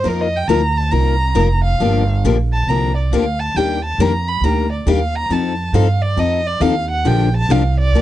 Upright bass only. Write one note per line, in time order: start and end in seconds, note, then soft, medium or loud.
0.04 0.47 F2 medium
0.48 0.91 D2 medium
0.92 1.35 C2 medium
1.35 1.78 F1 medium
1.80 2.23 G1 medium
2.24 2.67 A#1 medium
2.67 3.10 C2 medium
3.11 3.54 D2 medium
3.55 3.98 D#2 medium
3.98 4.40 F2 medium
4.41 4.85 D2 medium
4.86 5.29 D#2 medium
5.29 5.72 F2 medium
5.73 6.16 G2 medium
6.17 6.60 F2 medium
6.60 7.04 D#2 loud
7.05 7.48 A#1 loud
7.49 7.92 C2 medium
7.93 8.02 D2 medium